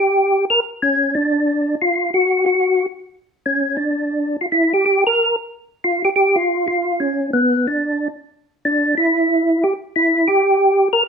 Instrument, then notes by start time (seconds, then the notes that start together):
tonewheel organ
Already playing: G4
0.50 A#4
0.82 C#4
1.15 D4
1.82 F4
2.14 F#4
2.46 F#4
3.46 C#4
3.77 D4
4.41 F4
4.52 E4
4.74 G4
4.86 G4
5.07 A#4
5.84 F4
6.05 G4
6.16 G4
6.36 F4
6.68 F4
7.00 C#4
7.33 B3
7.68 D4
8.65 D4
8.97 E4
9.64 G4
9.96 E4
10.28 G4
10.93 A#4